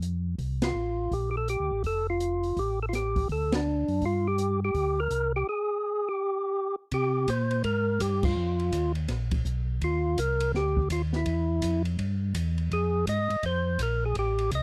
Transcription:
0.00 0.35 F2 medium
0.00 closed hi-hat soft
0.38 0.73 C2 medium
0.38 kick soft
0.38 open hi-hat soft
0.62 1.14 F4 medium
0.62 snare medium
0.62 ride medium
0.74 1.09 A1 medium
1.11 1.57 A#1 medium
1.11 1.30 G4 medium
1.11 kick soft
1.11 open hi-hat soft
1.31 1.36 G4 soft
1.37 1.48 A4 medium
1.48 1.83 G4 medium
1.48 closed hi-hat soft
1.60 1.71 D2 soft
1.72 1.83 A1 medium
1.84 2.53 F1 medium
1.84 2.07 A4 medium
1.84 kick soft
1.84 open hi-hat soft
2.10 2.60 F4 medium
2.20 closed hi-hat soft
2.43 open hi-hat soft
2.57 3.26 A1 medium
2.57 2.79 G4 medium
2.57 kick soft
2.57 open hi-hat soft
2.83 2.86 A4 medium
2.89 2.94 F4 medium
2.93 3.28 G4 medium
2.93 snare soft
2.93 closed hi-hat soft
3.16 kick soft
3.16 open hi-hat soft
3.29 3.85 D2 medium
3.29 3.54 A4 medium
3.29 kick soft
3.29 open hi-hat soft
3.52 4.05 D4 medium
3.52 snare medium
3.52 ride medium
3.88 4.01 F#2 medium
3.88 open hi-hat soft
4.02 4.71 G2 medium
4.02 kick soft
4.02 open hi-hat soft
4.06 4.27 F4 medium
4.28 4.60 G4 medium
4.38 closed hi-hat soft
4.65 5.00 G4 medium
4.74 5.08 D2 medium
4.74 kick soft
4.74 open hi-hat soft
5.00 5.32 A#4 loud
5.10 5.44 C2 medium
5.10 closed hi-hat soft
5.36 5.47 G4 medium
5.49 6.09 G#4 medium
6.08 6.76 G4 medium
6.91 7.27 C3 medium
6.91 7.30 G4 medium
6.91 kick soft
6.91 ride medium
7.28 7.63 A#2 medium
7.28 7.62 C5 medium
7.28 kick soft
7.28 hi-hat pedal soft
7.28 ride medium
7.51 ride soft
7.64 7.99 G#2 medium
7.64 8.01 A#4 loud
7.64 kick soft
7.64 ride medium
8.00 8.35 G2 medium
8.00 8.24 G4 medium
8.00 kick soft
8.00 hi-hat pedal medium
8.00 ride medium
8.23 8.92 F4 medium
8.23 kick medium
8.23 crash medium
8.36 8.72 F2 medium
8.59 ride soft
8.72 9.08 D#2 medium
8.72 kick soft
8.72 hi-hat pedal medium
8.72 ride medium
8.95 ride soft
9.08 9.44 A#1 medium
9.08 kick soft
9.08 snare soft
9.08 ride medium
9.31 kick medium
9.31 ride medium
9.45 9.80 B1 medium
9.45 kick soft
9.45 hi-hat pedal medium
9.81 10.16 D#2 medium
9.81 10.20 F4 medium
9.81 kick soft
9.81 ride medium
10.17 10.53 C2 medium
10.17 10.52 A#4 medium
10.17 kick soft
10.17 hi-hat pedal medium
10.17 ride medium
10.40 ride medium
10.54 10.89 D2 medium
10.54 10.88 G4 medium
10.54 kick soft
10.54 snare soft
10.77 kick medium
10.90 11.25 D#2 medium
10.90 11.02 F4 medium
10.90 kick soft
10.90 hi-hat pedal medium
10.90 ride medium
11.13 11.83 E4 medium
11.13 snare soft
11.26 11.61 E2 medium
11.26 kick soft
11.26 ride medium
11.62 11.97 F2 medium
11.62 kick soft
11.62 hi-hat pedal medium
11.62 ride medium
11.85 ride soft
11.98 12.33 G2 medium
11.98 kick soft
11.98 ride medium
12.35 12.70 E2 medium
12.35 kick soft
12.35 hi-hat pedal medium
12.35 ride medium
12.58 ride soft
12.71 13.06 F2 medium
12.71 13.05 G#4 loud
12.71 kick soft
12.71 ride soft
13.07 13.28 G#2 medium
13.07 13.45 D#5 loud
13.07 kick soft
13.07 hi-hat pedal medium
13.07 ride medium
13.30 13.36 G#2 soft
13.30 ride soft
13.43 13.78 F2 medium
13.43 13.81 C5 loud
13.43 kick soft
13.43 ride medium
13.79 14.14 A#1 medium
13.79 14.04 A#4 medium
13.79 kick soft
13.79 hi-hat pedal medium
13.79 ride medium
14.06 14.16 G#4 medium
14.15 14.50 A1 medium
14.15 14.51 G4 medium
14.15 kick soft
14.15 ride medium
14.38 ride soft
14.51 14.63 C2 medium
14.51 14.63 D#5 medium
14.51 kick soft
14.51 hi-hat pedal medium
14.51 ride medium

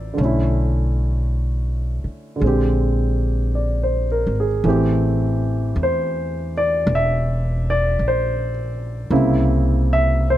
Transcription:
0.00 0.15 A1 medium
0.00 0.19 G3 soft
0.00 0.20 C4 soft
0.00 0.18 E4 medium
0.00 0.20 F4 medium
0.00 0.21 C5 medium
0.00 0.20 D5 medium
0.00 0.21 E5 medium
0.14 2.34 D3 medium
0.14 2.41 A3 soft
0.18 2.01 B1 medium
0.18 2.43 C#4 soft
0.25 2.45 E4 medium
2.04 muted upright bass stroke soft
2.36 4.62 D3 soft
2.40 4.24 A#1 medium
2.40 4.64 G#3 soft
2.40 4.66 C4 soft
2.47 4.67 G4 medium
3.55 4.07 D5 soft
3.83 4.30 C5 soft
4.12 4.45 A#4 soft
4.27 4.62 G#1 medium
4.40 4.78 G#4 soft
4.64 5.72 A1 medium
4.64 9.11 E3 medium
4.64 9.11 A3 soft
4.64 9.10 C4 soft
4.69 9.13 G4 medium
5.76 6.84 E2 medium
5.83 6.53 C5 medium
6.57 6.90 D5 medium
6.87 7.95 E1 medium
6.95 7.64 E5 medium
7.70 8.02 D5 medium
7.99 9.07 A#1 medium
8.08 8.50 C5 medium
9.10 10.38 C2 medium
9.10 10.38 C#3 medium
9.10 10.38 A#3 medium
9.10 10.38 C4 soft
9.10 10.38 E4 medium
9.93 10.25 E5 medium
10.30 10.38 C5 medium

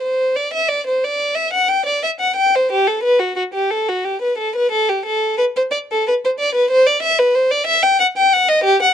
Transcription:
0.01 0.35 C5 medium
0.36 0.53 D5 medium
0.54 0.69 E5 medium
0.68 0.86 D5 medium
0.87 1.03 C5 medium
1.04 1.37 D5 medium
1.35 1.52 E5 medium
1.53 1.70 F#5 medium
1.68 1.86 G5 medium
1.86 2.03 D5 medium
2.04 2.10 E5 medium
2.20 2.37 F#5 medium
2.36 2.53 G5 medium
2.55 2.71 C5 medium
2.72 2.88 G4 medium
2.87 3.04 A4 medium
3.03 3.20 B4 medium
3.19 3.35 F#4 medium
3.36 3.43 F#4 medium
3.54 3.70 G4 medium
3.71 3.87 A4 medium
3.89 4.05 F#4 medium
4.04 4.21 G4 medium
4.22 4.37 B4 medium
4.38 4.54 A4 medium
4.56 4.71 B4 medium
4.72 4.87 A4 medium
4.89 5.05 G4 medium
5.06 5.38 A4 medium
5.38 5.45 B4 medium
5.56 5.63 C5 medium
5.71 5.78 D5 medium
5.91 6.06 A4 medium
6.08 6.14 B4 medium
6.25 6.31 C5 medium
6.39 6.55 D5 medium
6.55 6.70 B4 medium
6.71 6.86 C5 medium
6.86 7.02 D5 medium
7.03 7.18 E5 medium
7.19 7.35 B4 medium
7.35 7.51 C5 medium
7.51 7.67 D5 medium
7.67 7.83 E5 medium
7.83 7.99 G5 medium
8.00 8.07 F#5 medium
8.17 8.33 G5 medium
8.33 8.49 F#5 medium
8.49 8.65 D#5 medium
8.64 8.81 G4 medium
8.82 8.94 F#5 medium

